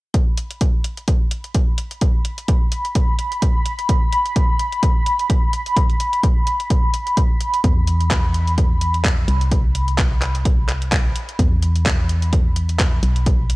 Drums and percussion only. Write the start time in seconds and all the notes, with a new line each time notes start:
0.14 kick, closed hi-hat
0.37 closed hi-hat
0.51 closed hi-hat
0.61 kick, closed hi-hat
0.84 closed hi-hat
0.97 closed hi-hat
1.08 kick, closed hi-hat
1.31 closed hi-hat
1.44 closed hi-hat
1.55 kick, closed hi-hat
1.78 closed hi-hat
1.91 closed hi-hat
2.01 kick, closed hi-hat
2.25 closed hi-hat
2.38 closed hi-hat
2.48 kick, closed hi-hat
2.72 closed hi-hat
2.85 closed hi-hat
2.95 kick, closed hi-hat
3.19 closed hi-hat
3.32 closed hi-hat
3.42 kick, closed hi-hat
3.66 closed hi-hat
3.79 closed hi-hat
3.89 kick, closed hi-hat
4.13 closed hi-hat
4.26 closed hi-hat
4.36 kick, closed hi-hat
4.59 closed hi-hat
4.72 closed hi-hat
4.83 kick, closed hi-hat
5.06 closed hi-hat
5.19 closed hi-hat
5.30 kick, closed hi-hat
5.53 closed hi-hat
5.66 closed hi-hat
5.77 kick, closed hi-hat
5.90 closed hi-hat
6.00 closed hi-hat
6.13 closed hi-hat
6.23 kick, closed hi-hat
6.47 closed hi-hat
6.60 closed hi-hat
6.70 kick, closed hi-hat
6.94 closed hi-hat
7.07 closed hi-hat
7.17 kick, closed hi-hat
7.41 closed hi-hat
7.54 closed hi-hat
7.64 kick, closed hi-hat
7.87 closed hi-hat
8.01 closed hi-hat
8.11 kick, clap, closed hi-hat
8.34 closed hi-hat
8.47 closed hi-hat
8.58 kick, closed hi-hat
8.81 closed hi-hat
8.94 closed hi-hat
9.05 kick, clap, closed hi-hat
9.28 closed hi-hat
9.41 closed hi-hat
9.52 kick, closed hi-hat
9.75 closed hi-hat
9.88 closed hi-hat
9.98 kick, clap, closed hi-hat
10.22 clap, closed hi-hat
10.35 closed hi-hat
10.45 kick, closed hi-hat
10.69 clap, closed hi-hat
10.82 closed hi-hat
10.92 kick, clap, closed hi-hat
11.16 closed hi-hat
11.29 closed hi-hat
11.39 kick, closed hi-hat
11.62 closed hi-hat
11.76 closed hi-hat
11.86 kick, clap, closed hi-hat
12.09 closed hi-hat
12.22 closed hi-hat
12.33 kick, closed hi-hat
12.56 closed hi-hat
12.69 closed hi-hat
12.79 kick, clap, closed hi-hat
13.03 closed hi-hat
13.16 closed hi-hat
13.26 kick, closed hi-hat
13.50 closed hi-hat